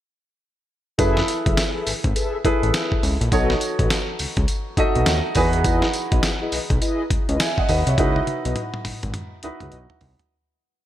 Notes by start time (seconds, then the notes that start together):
0.98 F#1 E4 G#4 A4 B4 E5, kick, closed hi-hat, tambourine
1.17 snare
1.28 closed hi-hat, tambourine
1.46 F#1 G#4 A4 B4 E5, kick, closed hi-hat
1.57 snare, closed hi-hat, tambourine
1.74 G#4 A4 B4 E5
1.87 G#1, open hi-hat, tambourine
2.04 G#1, kick, closed hi-hat
2.15 G#4 A4 B4 E5, closed hi-hat, tambourine
2.44 A1 E4 G#4 A4 B4, kick, closed hi-hat
2.62 A1 G#4 A4 B4 E5, closed hi-hat
2.74 snare, closed hi-hat, tambourine
2.92 kick
3.03 C#2, open hi-hat, tambourine
3.21 A#1, closed hi-hat
3.31 B1 D#4 F#4 A4 B4 C#5 D#5, kick, closed hi-hat, tambourine
3.50 snare
3.61 closed hi-hat, tambourine
3.79 A1 F#4 A4 B4 D#5, kick, closed hi-hat
3.90 snare, closed hi-hat, tambourine
4.19 C#2, open hi-hat, tambourine
4.37 C#2, kick, closed hi-hat
4.48 closed hi-hat, tambourine
4.77 B1 D#4 F#4 A4 D#5 E5, kick, closed hi-hat
4.95 B1 F#4 A4 B4 D#5, closed hi-hat
5.06 D#2 F#5, snare, closed hi-hat, tambourine
5.35 E2 D#4 F#4 G#4 B4 G#5, kick, open hi-hat, tambourine
5.53 closed hi-hat
5.64 E4 G#4 B4 D#5, kick, closed hi-hat, tambourine
5.82 snare
5.93 closed hi-hat, tambourine
6.12 B1 E4 G#4 B4 D#5, kick, closed hi-hat
6.23 snare, closed hi-hat, tambourine
6.41 E4 G#4 B4 D#5
6.52 B1, open hi-hat, tambourine
6.70 B1, kick, closed hi-hat
6.81 E4 G#4 B4 D#5, closed hi-hat, tambourine
7.10 C#2, kick, closed hi-hat
7.28 C#2 E4 G#4 B4 D#5, closed hi-hat
7.40 E5 G#5, snare, closed hi-hat, tambourine
7.58 D#5 F#5, kick
7.69 D#2 B4 D#5, open hi-hat, tambourine
7.87 C2 C#5 E5, closed hi-hat
7.98 C#2 D#4 E4 F#4 B4 D#5, kick, closed hi-hat, high tom
8.16 high tom
8.27 closed hi-hat, high tom
8.45 B1 E4 F#4 B4 D#5, closed hi-hat
8.56 closed hi-hat, mid tom
8.74 mid tom
8.85 G#1, open hi-hat, mid tom
9.03 G#1, closed hi-hat, mid tom
9.14 closed hi-hat, mid tom
9.43 C#2 D#4 E4 F#4 B4, closed hi-hat
9.60 C#2 E4 F#4 B4 D#5, closed hi-hat, mid tom
9.72 B1, closed hi-hat
9.90 floor tom
10.01 C2, floor tom, open hi-hat
10.19 closed hi-hat, floor tom